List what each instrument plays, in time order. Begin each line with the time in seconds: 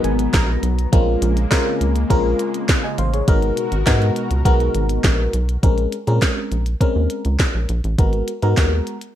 Already playing: analog synth pad B2 F#3 B3, fm electric piano G#3 B3 D#4 F#4 A#4
0.04 analog synth bass G#1, fm electric piano G#5, closed hi-hat
0.19 closed hi-hat
0.34 analog synth bass A#1, fm electric piano A#5, kick, snare, clap, closed hi-hat
0.63 analog synth bass B1, closed hi-hat
0.79 closed hi-hat
0.92 analog synth bass A#1, analog synth pad C#3 G#3 A#3, fm electric piano G#3 C4 C#4 F4 A#4, kick, closed hi-hat
1.22 analog synth bass A#1, closed hi-hat
1.37 closed hi-hat
1.51 fm electric piano G#3 C4 C#4 F4 A#4, kick, snare, clap, closed hi-hat
1.81 analog synth bass C#2, closed hi-hat
1.96 closed hi-hat
2.10 analog synth bass A#1, fm electric piano G#3 C4 C#4 F4 A#4, kick, closed hi-hat
2.39 closed hi-hat
2.54 closed hi-hat
2.69 kick, snare, clap, closed hi-hat
2.83 fm electric piano D#5 G#5
2.98 analog synth bass A1, fm electric piano C5 F5, closed hi-hat
3.13 fm electric piano G#4 C#5, closed hi-hat
3.28 analog synth bass G#1, analog synth pad B2 F#4 A#4, fm electric piano G#3 B3 D#4 F#4 A#4, kick, closed hi-hat
3.42 closed hi-hat
3.57 closed hi-hat
3.72 analog synth bass G#1, closed hi-hat
3.86 analog synth bass G#2, fm electric piano G#3 B3 D#4 F#4 A#4, kick, snare, clap, closed hi-hat
4.02 closed hi-hat
4.16 closed hi-hat
4.31 analog synth bass C#2, closed hi-hat
4.45 analog synth bass B1, fm electric piano G#3 B3 D#4 F#4 A#4, kick, closed hi-hat
4.60 closed hi-hat
4.75 analog synth bass G#1, closed hi-hat
4.89 closed hi-hat
5.04 analog synth bass A#1, kick, snare, clap, closed hi-hat
5.33 analog synth bass B1, closed hi-hat
5.49 closed hi-hat
5.63 analog synth bass A#1, fm electric piano G#3 C4 C#4 A#4, kick, closed hi-hat
5.78 closed hi-hat
5.92 closed hi-hat
6.07 analog synth bass A#2, fm electric piano G#3 C4 C#4 A#4, closed hi-hat
6.22 kick, snare, clap, closed hi-hat
6.52 analog synth bass A#1, closed hi-hat
6.66 closed hi-hat
6.80 fm electric piano G#3 C4 C#4 A#4, kick, closed hi-hat
6.96 analog synth bass D#2
7.10 closed hi-hat
7.25 analog synth bass C#2, closed hi-hat
7.40 kick, snare, clap, closed hi-hat
7.54 analog synth bass A#1
7.69 analog synth bass A#1, closed hi-hat
7.84 analog synth bass A1, closed hi-hat
7.98 analog synth bass G#1, fm electric piano G#3 B3 F#4 A#4, kick, closed hi-hat
8.13 closed hi-hat
8.28 closed hi-hat
8.42 analog synth bass G#2, fm electric piano G#3 B3 F#4 A#4, closed hi-hat
8.57 analog synth bass D#2, kick, snare, clap, closed hi-hat
8.87 closed hi-hat
9.01 closed hi-hat